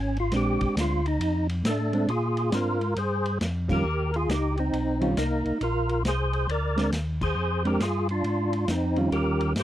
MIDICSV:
0, 0, Header, 1, 5, 480
1, 0, Start_track
1, 0, Tempo, 439560
1, 361, Time_signature, 4, 2, 24, 8
1, 10516, End_track
2, 0, Start_track
2, 0, Title_t, "Tonewheel organ"
2, 0, Program_c, 0, 16
2, 0, Note_on_c, 0, 61, 79
2, 194, Note_off_c, 0, 61, 0
2, 216, Note_on_c, 0, 65, 92
2, 368, Note_off_c, 0, 65, 0
2, 395, Note_on_c, 0, 67, 94
2, 825, Note_off_c, 0, 67, 0
2, 876, Note_on_c, 0, 65, 81
2, 1160, Note_off_c, 0, 65, 0
2, 1172, Note_on_c, 0, 63, 91
2, 1608, Note_off_c, 0, 63, 0
2, 1817, Note_on_c, 0, 57, 69
2, 1836, Note_on_c, 0, 62, 83
2, 2255, Note_off_c, 0, 57, 0
2, 2289, Note_on_c, 0, 65, 67
2, 2289, Note_on_c, 0, 68, 89
2, 2312, Note_off_c, 0, 62, 0
2, 2731, Note_off_c, 0, 65, 0
2, 2770, Note_on_c, 0, 65, 65
2, 2773, Note_on_c, 0, 70, 88
2, 2779, Note_off_c, 0, 68, 0
2, 3212, Note_off_c, 0, 65, 0
2, 3250, Note_on_c, 0, 72, 94
2, 3258, Note_on_c, 0, 68, 71
2, 3261, Note_off_c, 0, 70, 0
2, 3692, Note_off_c, 0, 72, 0
2, 3696, Note_off_c, 0, 68, 0
2, 4058, Note_on_c, 0, 67, 66
2, 4068, Note_on_c, 0, 70, 87
2, 4493, Note_off_c, 0, 67, 0
2, 4542, Note_on_c, 0, 65, 65
2, 4544, Note_off_c, 0, 70, 0
2, 4551, Note_on_c, 0, 68, 79
2, 4685, Note_off_c, 0, 65, 0
2, 4704, Note_on_c, 0, 63, 62
2, 4705, Note_off_c, 0, 68, 0
2, 4706, Note_on_c, 0, 67, 83
2, 4983, Note_off_c, 0, 63, 0
2, 5014, Note_off_c, 0, 67, 0
2, 5015, Note_on_c, 0, 60, 62
2, 5020, Note_on_c, 0, 63, 82
2, 5609, Note_off_c, 0, 60, 0
2, 5612, Note_off_c, 0, 63, 0
2, 5656, Note_on_c, 0, 58, 66
2, 5658, Note_on_c, 0, 63, 82
2, 6096, Note_off_c, 0, 58, 0
2, 6143, Note_on_c, 0, 70, 96
2, 6144, Note_off_c, 0, 63, 0
2, 6158, Note_on_c, 0, 65, 74
2, 6580, Note_off_c, 0, 70, 0
2, 6588, Note_off_c, 0, 65, 0
2, 6628, Note_on_c, 0, 72, 93
2, 6638, Note_on_c, 0, 68, 71
2, 7068, Note_off_c, 0, 68, 0
2, 7105, Note_on_c, 0, 74, 90
2, 7109, Note_off_c, 0, 72, 0
2, 7113, Note_on_c, 0, 70, 79
2, 7540, Note_off_c, 0, 74, 0
2, 7545, Note_off_c, 0, 70, 0
2, 7889, Note_on_c, 0, 72, 90
2, 7896, Note_on_c, 0, 68, 74
2, 8332, Note_off_c, 0, 68, 0
2, 8373, Note_on_c, 0, 67, 61
2, 8374, Note_on_c, 0, 70, 85
2, 8375, Note_off_c, 0, 72, 0
2, 8520, Note_off_c, 0, 67, 0
2, 8535, Note_on_c, 0, 68, 76
2, 8537, Note_off_c, 0, 70, 0
2, 8546, Note_on_c, 0, 65, 63
2, 8818, Note_off_c, 0, 68, 0
2, 8824, Note_off_c, 0, 65, 0
2, 8853, Note_on_c, 0, 65, 82
2, 8859, Note_on_c, 0, 62, 64
2, 9450, Note_off_c, 0, 62, 0
2, 9496, Note_on_c, 0, 63, 81
2, 9504, Note_on_c, 0, 60, 61
2, 9510, Note_off_c, 0, 65, 0
2, 9935, Note_off_c, 0, 63, 0
2, 9939, Note_off_c, 0, 60, 0
2, 9965, Note_on_c, 0, 70, 88
2, 9972, Note_on_c, 0, 67, 72
2, 10408, Note_off_c, 0, 70, 0
2, 10412, Note_off_c, 0, 67, 0
2, 10474, Note_on_c, 0, 72, 86
2, 10479, Note_on_c, 0, 67, 65
2, 10516, Note_off_c, 0, 67, 0
2, 10516, Note_off_c, 0, 72, 0
2, 10516, End_track
3, 0, Start_track
3, 0, Title_t, "Hollow-body jazz guitar"
3, 0, Program_c, 1, 26
3, 357, Note_on_c, 1, 56, 62
3, 367, Note_on_c, 1, 60, 67
3, 369, Note_on_c, 1, 62, 71
3, 1087, Note_off_c, 1, 56, 0
3, 1092, Note_off_c, 1, 60, 0
3, 1093, Note_off_c, 1, 62, 0
3, 2107, Note_on_c, 1, 56, 61
3, 2117, Note_on_c, 1, 60, 74
3, 2125, Note_on_c, 1, 62, 73
3, 2261, Note_off_c, 1, 56, 0
3, 2266, Note_off_c, 1, 60, 0
3, 2270, Note_off_c, 1, 62, 0
3, 2745, Note_on_c, 1, 56, 55
3, 2748, Note_on_c, 1, 60, 57
3, 2756, Note_on_c, 1, 62, 64
3, 3032, Note_off_c, 1, 56, 0
3, 3034, Note_off_c, 1, 60, 0
3, 3038, Note_off_c, 1, 62, 0
3, 4020, Note_on_c, 1, 51, 61
3, 4024, Note_on_c, 1, 55, 67
3, 4029, Note_on_c, 1, 61, 67
3, 4034, Note_on_c, 1, 65, 64
3, 4178, Note_off_c, 1, 51, 0
3, 4180, Note_off_c, 1, 55, 0
3, 4182, Note_off_c, 1, 61, 0
3, 4185, Note_off_c, 1, 65, 0
3, 5471, Note_on_c, 1, 51, 63
3, 5473, Note_on_c, 1, 55, 63
3, 5480, Note_on_c, 1, 61, 71
3, 5484, Note_on_c, 1, 65, 71
3, 5624, Note_off_c, 1, 51, 0
3, 5625, Note_off_c, 1, 55, 0
3, 5628, Note_off_c, 1, 61, 0
3, 5630, Note_off_c, 1, 65, 0
3, 7384, Note_on_c, 1, 56, 59
3, 7392, Note_on_c, 1, 60, 55
3, 7397, Note_on_c, 1, 62, 64
3, 7540, Note_off_c, 1, 56, 0
3, 7545, Note_off_c, 1, 60, 0
3, 7547, Note_off_c, 1, 62, 0
3, 8354, Note_on_c, 1, 56, 70
3, 8355, Note_on_c, 1, 60, 67
3, 8364, Note_on_c, 1, 62, 70
3, 8505, Note_off_c, 1, 56, 0
3, 8506, Note_off_c, 1, 60, 0
3, 8510, Note_off_c, 1, 62, 0
3, 9792, Note_on_c, 1, 51, 55
3, 9798, Note_on_c, 1, 55, 58
3, 9803, Note_on_c, 1, 61, 66
3, 9808, Note_on_c, 1, 65, 67
3, 10406, Note_off_c, 1, 51, 0
3, 10409, Note_off_c, 1, 55, 0
3, 10411, Note_off_c, 1, 61, 0
3, 10414, Note_off_c, 1, 65, 0
3, 10516, End_track
4, 0, Start_track
4, 0, Title_t, "Tonewheel organ"
4, 0, Program_c, 2, 16
4, 0, Note_on_c, 2, 32, 91
4, 343, Note_off_c, 2, 32, 0
4, 349, Note_on_c, 2, 34, 94
4, 644, Note_off_c, 2, 34, 0
4, 665, Note_on_c, 2, 34, 42
4, 751, Note_off_c, 2, 34, 0
4, 827, Note_on_c, 2, 38, 95
4, 1299, Note_off_c, 2, 38, 0
4, 1305, Note_on_c, 2, 41, 87
4, 1778, Note_off_c, 2, 41, 0
4, 1786, Note_on_c, 2, 45, 94
4, 2258, Note_off_c, 2, 45, 0
4, 2273, Note_on_c, 2, 46, 81
4, 2742, Note_off_c, 2, 46, 0
4, 2753, Note_on_c, 2, 44, 83
4, 3222, Note_off_c, 2, 44, 0
4, 3230, Note_on_c, 2, 43, 78
4, 3701, Note_off_c, 2, 43, 0
4, 3716, Note_on_c, 2, 41, 87
4, 4184, Note_off_c, 2, 41, 0
4, 4193, Note_on_c, 2, 39, 86
4, 4663, Note_off_c, 2, 39, 0
4, 4670, Note_on_c, 2, 37, 86
4, 5141, Note_off_c, 2, 37, 0
4, 5160, Note_on_c, 2, 35, 79
4, 5627, Note_off_c, 2, 35, 0
4, 5641, Note_on_c, 2, 36, 85
4, 5931, Note_off_c, 2, 36, 0
4, 5949, Note_on_c, 2, 36, 39
4, 6035, Note_off_c, 2, 36, 0
4, 6123, Note_on_c, 2, 34, 89
4, 6588, Note_off_c, 2, 34, 0
4, 6596, Note_on_c, 2, 36, 89
4, 7064, Note_off_c, 2, 36, 0
4, 7070, Note_on_c, 2, 38, 84
4, 7541, Note_off_c, 2, 38, 0
4, 7551, Note_on_c, 2, 39, 84
4, 8022, Note_off_c, 2, 39, 0
4, 8031, Note_on_c, 2, 41, 81
4, 8502, Note_off_c, 2, 41, 0
4, 8511, Note_on_c, 2, 43, 83
4, 8981, Note_off_c, 2, 43, 0
4, 8995, Note_on_c, 2, 44, 81
4, 9463, Note_off_c, 2, 44, 0
4, 9470, Note_on_c, 2, 41, 86
4, 9940, Note_off_c, 2, 41, 0
4, 9952, Note_on_c, 2, 39, 80
4, 10421, Note_off_c, 2, 39, 0
4, 10426, Note_on_c, 2, 43, 86
4, 10516, Note_off_c, 2, 43, 0
4, 10516, End_track
5, 0, Start_track
5, 0, Title_t, "Drums"
5, 180, Note_on_c, 9, 51, 47
5, 289, Note_off_c, 9, 51, 0
5, 345, Note_on_c, 9, 51, 67
5, 347, Note_on_c, 9, 38, 40
5, 454, Note_off_c, 9, 51, 0
5, 456, Note_off_c, 9, 38, 0
5, 663, Note_on_c, 9, 51, 53
5, 670, Note_on_c, 9, 36, 61
5, 772, Note_off_c, 9, 51, 0
5, 779, Note_off_c, 9, 36, 0
5, 840, Note_on_c, 9, 44, 65
5, 840, Note_on_c, 9, 51, 79
5, 842, Note_on_c, 9, 38, 81
5, 949, Note_off_c, 9, 44, 0
5, 949, Note_off_c, 9, 51, 0
5, 951, Note_off_c, 9, 38, 0
5, 1153, Note_on_c, 9, 51, 52
5, 1263, Note_off_c, 9, 51, 0
5, 1317, Note_on_c, 9, 51, 69
5, 1427, Note_off_c, 9, 51, 0
5, 1631, Note_on_c, 9, 51, 54
5, 1740, Note_off_c, 9, 51, 0
5, 1799, Note_on_c, 9, 44, 73
5, 1799, Note_on_c, 9, 51, 82
5, 1801, Note_on_c, 9, 38, 80
5, 1908, Note_off_c, 9, 44, 0
5, 1908, Note_off_c, 9, 51, 0
5, 1911, Note_off_c, 9, 38, 0
5, 2108, Note_on_c, 9, 51, 47
5, 2217, Note_off_c, 9, 51, 0
5, 2276, Note_on_c, 9, 51, 57
5, 2385, Note_off_c, 9, 51, 0
5, 2587, Note_on_c, 9, 51, 44
5, 2696, Note_off_c, 9, 51, 0
5, 2753, Note_on_c, 9, 44, 53
5, 2753, Note_on_c, 9, 51, 73
5, 2755, Note_on_c, 9, 38, 63
5, 2862, Note_off_c, 9, 44, 0
5, 2862, Note_off_c, 9, 51, 0
5, 2865, Note_off_c, 9, 38, 0
5, 3069, Note_on_c, 9, 51, 43
5, 3178, Note_off_c, 9, 51, 0
5, 3236, Note_on_c, 9, 51, 62
5, 3345, Note_off_c, 9, 51, 0
5, 3554, Note_on_c, 9, 51, 45
5, 3663, Note_off_c, 9, 51, 0
5, 3721, Note_on_c, 9, 44, 60
5, 3721, Note_on_c, 9, 51, 71
5, 3724, Note_on_c, 9, 38, 70
5, 3831, Note_off_c, 9, 44, 0
5, 3831, Note_off_c, 9, 51, 0
5, 3833, Note_off_c, 9, 38, 0
5, 4034, Note_on_c, 9, 36, 71
5, 4036, Note_on_c, 9, 49, 67
5, 4143, Note_off_c, 9, 36, 0
5, 4145, Note_off_c, 9, 49, 0
5, 4518, Note_on_c, 9, 51, 46
5, 4627, Note_off_c, 9, 51, 0
5, 4689, Note_on_c, 9, 44, 60
5, 4689, Note_on_c, 9, 51, 66
5, 4691, Note_on_c, 9, 38, 67
5, 4798, Note_off_c, 9, 44, 0
5, 4798, Note_off_c, 9, 51, 0
5, 4800, Note_off_c, 9, 38, 0
5, 4994, Note_on_c, 9, 51, 44
5, 5104, Note_off_c, 9, 51, 0
5, 5169, Note_on_c, 9, 51, 58
5, 5279, Note_off_c, 9, 51, 0
5, 5475, Note_on_c, 9, 51, 45
5, 5584, Note_off_c, 9, 51, 0
5, 5646, Note_on_c, 9, 44, 52
5, 5646, Note_on_c, 9, 51, 74
5, 5648, Note_on_c, 9, 38, 66
5, 5755, Note_off_c, 9, 44, 0
5, 5755, Note_off_c, 9, 51, 0
5, 5757, Note_off_c, 9, 38, 0
5, 5957, Note_on_c, 9, 51, 42
5, 6066, Note_off_c, 9, 51, 0
5, 6124, Note_on_c, 9, 51, 60
5, 6234, Note_off_c, 9, 51, 0
5, 6435, Note_on_c, 9, 51, 43
5, 6544, Note_off_c, 9, 51, 0
5, 6604, Note_on_c, 9, 44, 56
5, 6604, Note_on_c, 9, 51, 64
5, 6606, Note_on_c, 9, 38, 67
5, 6713, Note_off_c, 9, 44, 0
5, 6713, Note_off_c, 9, 51, 0
5, 6715, Note_off_c, 9, 38, 0
5, 6914, Note_on_c, 9, 51, 46
5, 7023, Note_off_c, 9, 51, 0
5, 7090, Note_on_c, 9, 51, 61
5, 7199, Note_off_c, 9, 51, 0
5, 7398, Note_on_c, 9, 51, 47
5, 7400, Note_on_c, 9, 38, 51
5, 7508, Note_off_c, 9, 51, 0
5, 7510, Note_off_c, 9, 38, 0
5, 7561, Note_on_c, 9, 44, 60
5, 7561, Note_on_c, 9, 51, 72
5, 7563, Note_on_c, 9, 38, 69
5, 7670, Note_off_c, 9, 44, 0
5, 7670, Note_off_c, 9, 51, 0
5, 7672, Note_off_c, 9, 38, 0
5, 7877, Note_on_c, 9, 36, 75
5, 7878, Note_on_c, 9, 49, 67
5, 7987, Note_off_c, 9, 36, 0
5, 7987, Note_off_c, 9, 49, 0
5, 8355, Note_on_c, 9, 51, 45
5, 8464, Note_off_c, 9, 51, 0
5, 8521, Note_on_c, 9, 44, 55
5, 8521, Note_on_c, 9, 51, 66
5, 8523, Note_on_c, 9, 38, 68
5, 8630, Note_off_c, 9, 44, 0
5, 8630, Note_off_c, 9, 51, 0
5, 8632, Note_off_c, 9, 38, 0
5, 8831, Note_on_c, 9, 51, 46
5, 8940, Note_off_c, 9, 51, 0
5, 9000, Note_on_c, 9, 51, 58
5, 9109, Note_off_c, 9, 51, 0
5, 9313, Note_on_c, 9, 51, 48
5, 9422, Note_off_c, 9, 51, 0
5, 9478, Note_on_c, 9, 44, 52
5, 9478, Note_on_c, 9, 51, 71
5, 9480, Note_on_c, 9, 38, 69
5, 9587, Note_off_c, 9, 44, 0
5, 9587, Note_off_c, 9, 51, 0
5, 9589, Note_off_c, 9, 38, 0
5, 9787, Note_on_c, 9, 51, 39
5, 9896, Note_off_c, 9, 51, 0
5, 9960, Note_on_c, 9, 51, 57
5, 10070, Note_off_c, 9, 51, 0
5, 10271, Note_on_c, 9, 51, 47
5, 10380, Note_off_c, 9, 51, 0
5, 10435, Note_on_c, 9, 44, 51
5, 10435, Note_on_c, 9, 51, 67
5, 10438, Note_on_c, 9, 38, 69
5, 10516, Note_off_c, 9, 38, 0
5, 10516, Note_off_c, 9, 44, 0
5, 10516, Note_off_c, 9, 51, 0
5, 10516, End_track
0, 0, End_of_file